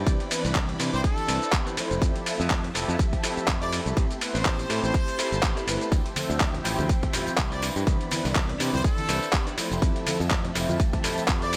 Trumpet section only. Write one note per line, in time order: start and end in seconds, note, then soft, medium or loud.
0.94 1.02 C5 medium
1.04 1.53 A4 loud
3.62 3.77 D5 loud
4.35 4.81 C5 loud
4.84 5.51 C5 loud
7.52 7.68 D5 medium
8.74 8.83 C5 loud
8.84 9.33 A4 loud
11.42 11.57 D5 medium